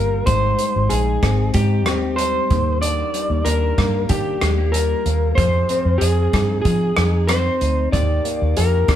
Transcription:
Already playing: G1 D#3 G3 A#3 D4 A#4
0.26 G#1 G#2 D#4 C5, kick, closed hi-hat
0.59 closed hi-hat
0.76 G#1
0.89 A#1 D#4 G#4, closed hi-hat
1.22 G#1 C4, kick, cross-stick, closed hi-hat
1.54 G#2 D#4 G4, kick, closed hi-hat
1.86 D#2 C4, cross-stick, closed hi-hat
2.16 G3 C5, closed hi-hat
2.50 D#2 D#3, kick, closed hi-hat
2.81 D#3 D4 D5, closed hi-hat
3.14 G3, closed hi-hat
3.30 D#2
3.45 D#2 D4 A#4, closed hi-hat
3.78 G2 A#3, kick, cross-stick, closed hi-hat
4.09 D#3 D4 G4, kick, closed hi-hat
4.41 D#2 G#3, cross-stick, closed hi-hat
4.57 A#3
4.72 G3 A#4, closed hi-hat
5.05 D#2 A#3, closed hi-hat
5.35 F2 F3 G#4 C5, kick, closed hi-hat
5.69 C4, closed hi-hat
5.85 F2
5.98 F2 G#4, closed hi-hat
6.33 G2 D#4, kick, cross-stick, closed hi-hat
6.62 F3 G#4, kick, closed hi-hat
6.96 F2 D#4, cross-stick, closed hi-hat
7.27 C4 C5, cross-stick, closed hi-hat
7.61 D2 D#4, closed hi-hat
7.92 D#2 D#3 G4 D5, kick, closed hi-hat
8.24 A#3, closed hi-hat
8.42 D#2
8.57 F2 G4 A#4, closed hi-hat
8.88 D#2 D4, kick, cross-stick, closed hi-hat

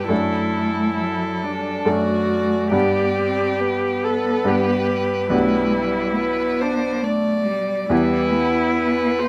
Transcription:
Already playing: G2 B3 D4 G4
0.09 F#2 A3 D4 E4 A4
0.97 F#3 A4
1.42 G3 D4
1.85 F#2 A3 D4 F#4 A4 D5
2.71 G2 B3 D4 G4 D5
3.17 C4
3.59 B3 B4
4.04 A4
4.45 G2 B3 D4 G4
5.30 B1 A3 B3 D4 E4 G4
5.72 G3
6.15 B3 B4
6.60 D4 C5
7.02 A3 D5
7.45 G3
7.90 E2 G3 B3 E4 G4 B4
8.32 B3
8.77 B4
9.18 C5

